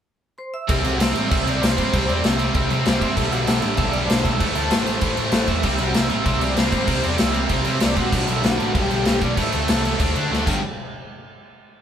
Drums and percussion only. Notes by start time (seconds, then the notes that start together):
0.69 kick, crash
0.85 crash
1.00 snare, crash
1.15 crash
1.31 kick, crash
1.47 crash
1.63 snare, crash
1.78 kick, crash
1.93 kick, crash
2.09 crash
2.24 snare, crash
2.39 crash
2.54 kick, crash
2.70 crash
2.86 snare, crash
3.01 kick, crash
3.17 kick, crash
3.32 crash
3.47 snare, crash
3.62 crash
3.77 kick, crash
3.93 crash
4.10 snare, crash
4.25 kick, crash
4.40 kick, crash
4.55 crash
4.71 snare, crash
4.87 crash
5.01 kick, crash
5.17 crash
5.32 snare, crash
5.48 kick, crash
5.63 kick, crash
5.78 crash
5.94 snare, crash
6.10 crash
6.26 kick, crash
6.41 crash
6.57 snare, crash
6.72 kick, crash
6.87 kick, crash
7.04 crash
7.18 snare, crash
7.34 crash
7.49 kick, crash
7.65 crash
7.80 snare, crash
7.97 kick, crash
8.13 kick, crash
8.28 crash
8.44 snare, crash
8.60 crash
8.75 kick, crash
8.91 crash
9.05 snare, crash
9.21 kick, crash
9.37 kick, crash
9.52 crash
9.68 snare, crash
9.85 crash
10.00 kick, crash
10.16 crash
10.33 snare
10.47 kick, crash